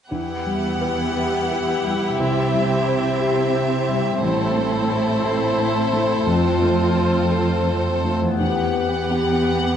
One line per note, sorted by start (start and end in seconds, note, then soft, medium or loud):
0.10 2.16 E2 soft
0.10 2.22 E3 soft
0.10 2.15 B3 soft
0.10 4.18 E4 soft
0.10 4.17 G4 soft
0.10 2.15 F#5 soft
0.47 1.03 G3 soft
0.47 1.84 G3 soft
0.81 1.37 B4 soft
0.81 2.22 F#5 soft
1.16 1.72 G4 soft
1.16 2.22 B4 soft
1.51 2.23 G4 soft
1.51 2.06 B4 soft
1.84 2.19 G3 soft
1.84 2.53 G3 soft
2.19 4.18 C2 soft
2.19 4.18 C3 soft
2.19 4.25 C3 soft
2.19 6.23 C4 soft
2.19 4.18 E5 soft
2.54 3.08 G3 soft
2.54 3.87 G3 soft
2.87 3.53 E4 soft
2.87 3.41 C5 soft
3.20 3.75 G4 soft
3.20 5.24 C5 soft
3.54 4.89 E4 soft
3.54 4.09 C5 soft
3.88 4.25 G3 soft
3.88 4.22 G3 soft
4.22 6.24 A1 soft
4.22 6.23 A2 soft
4.22 6.30 A2 soft
4.22 6.23 E4 soft
4.22 8.16 A4 soft
4.22 8.16 C5 soft
4.57 5.91 A3 soft
4.57 5.11 A3 soft
4.90 5.58 E4 soft
4.90 5.45 C5 soft
5.25 5.80 A4 soft
5.25 7.30 C5 soft
5.59 6.30 E4 soft
5.59 6.13 C5 soft
5.93 6.60 A3 soft
5.93 6.27 A3 soft
6.27 8.43 F2 soft
6.27 8.37 F2 soft
6.27 8.16 F2 soft
6.27 8.17 C4 soft
6.27 8.20 F4 soft
6.61 8.02 A3 soft
6.61 7.18 A3 soft
6.96 7.66 F4 soft
6.96 7.53 C5 soft
7.31 7.89 A4 soft
7.31 8.44 C5 soft
7.67 8.44 F4 soft
7.67 8.26 C5 soft
8.03 8.43 A3 soft
8.03 8.41 A3 soft
8.22 9.77 E2 soft
8.27 9.77 B3 soft
8.31 9.77 F#5 soft
8.36 9.77 G4 soft
8.40 9.09 E2 soft
8.40 9.77 E2 soft
8.40 9.77 B3 soft
8.40 9.77 G4 soft
8.40 9.77 F#5 soft
9.10 9.77 B3 soft
9.10 9.77 G4 soft
9.10 9.77 F#5 soft